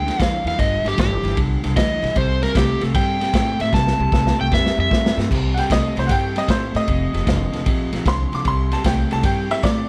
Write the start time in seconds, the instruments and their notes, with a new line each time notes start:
Already playing: electric slide guitar G5
0.06 clean electric guitar G2 D3, snare, ride
0.18 upright bass E2, clean electric guitar G2 E3, electric slide guitar F5, kick, snare, ride
0.44 upright bass E2, clean electric guitar G2 E3, electric slide guitar F5, ride
0.48 snare
0.59 upright bass G1, clean electric guitar G2 D3, electric slide guitar D#5, kick, snare, ride
0.85 upright bass G1, clean electric guitar G2 D3, electric slide guitar G4, snare, ride
0.98 upright bass G1, clean electric guitar G2 E3, electric slide guitar G4, kick, snare, ride
1.23 upright bass G1, clean electric guitar G2 E3, snare, ride
1.37 upright bass C2, clean electric guitar G2 D3, kick, ride
1.64 upright bass C2, clean electric guitar G2 D3, snare, ride
1.76 upright bass D2, clean electric guitar G2 E3, electric slide guitar D#5, kick, snare, ride
2.02 upright bass B1, clean electric guitar G2 E3, snare, ride
2.16 upright bass C2, clean electric guitar C3 G3, electric slide guitar C5, kick, ride
2.42 clean electric guitar C3 G3, electric slide guitar A#4, snare, ride
2.55 upright bass C2, clean electric guitar C3 A3, electric slide guitar G4, kick, snare, ride
2.81 upright bass C2, clean electric guitar C3 A3, snare, ride
2.94 upright bass G2, clean electric guitar C3 G3, electric slide guitar G5, kick, snare, ride
3.21 clean electric guitar C3 G3, snare, ride
3.33 upright bass A2, clean electric guitar C3 A3, kick, snare, ride
3.59 upright bass A2, clean electric guitar C3 A3, electric slide guitar E5, snare, ride
3.72 upright bass C2, clean electric guitar C3 G3, electric slide guitar A5, kick, snare
3.87 snare
3.99 upright bass C2, clean electric guitar C3 G3
4.12 upright bass C2, clean electric guitar C3 A3, kick, snare
4.27 snare
4.38 upright bass C2, clean electric guitar C3 A3, electric slide guitar G5
4.51 upright bass F2, clean electric guitar C3 G3, electric slide guitar E5, kick, snare
4.66 snare
4.78 upright bass F2, clean electric guitar C3 G3, electric slide guitar E5
4.91 upright bass G2, clean electric guitar C3 A3, kick, snare
5.06 snare
5.17 upright bass G2, clean electric guitar C3 A3, snare
5.31 upright bass C2, clean electric guitar C3 G3, kick, snare, crash
5.54 clean electric guitar C3 G3, upright piano F#5, ride
5.59 upright piano G5, snare
5.70 upright bass C2, clean electric guitar C3 A3, upright piano D#5, kick, snare, ride
5.96 upright bass C2, clean electric guitar C3 A3, upright piano C5, snare, ride
6.07 upright bass G2, clean electric guitar C3 G3, upright piano F#5, kick, snare, ride
6.11 upright piano G5
6.36 clean electric guitar C3 G3, upright piano D#5, snare, ride
6.48 upright bass A2, clean electric guitar C3 A3, upright piano C5, kick, snare, ride
6.75 upright bass A2, clean electric guitar C3 A3, upright piano D#5, snare, ride
6.87 upright bass F1, clean electric guitar F2 C3, kick, ride
7.13 upright bass F1, clean electric guitar F2 C3, snare, ride
7.25 upright bass F1, clean electric guitar F2 D3, kick, snare, ride
7.52 upright bass F1, clean electric guitar F2 D3, snare, ride
7.65 upright bass A#1, clean electric guitar F2 C3, kick, ride
7.93 upright bass A#1, clean electric guitar F2 C3, snare, ride
8.05 upright bass C2, clean electric guitar F2 D3, upright piano C6, kick, snare, ride
8.32 upright bass C2, clean electric guitar F2 D3, upright piano D6, snare, ride
8.45 upright bass C2, clean electric guitar C3 G3, upright piano C6, kick, ride
8.71 clean electric guitar C3 G3, upright piano A5, snare, ride
8.84 upright bass C2, clean electric guitar C3 A3, upright piano G5, kick, snare, ride
9.11 upright bass C2, clean electric guitar C3 A3, upright piano A5, snare, ride
9.23 upright bass G2, clean electric guitar C3 G3, upright piano G5, kick, snare, ride
9.50 clean electric guitar C3 G3, upright piano E5, snare, ride
9.63 upright bass A2, clean electric guitar C3 A3, upright piano D5, kick, snare, ride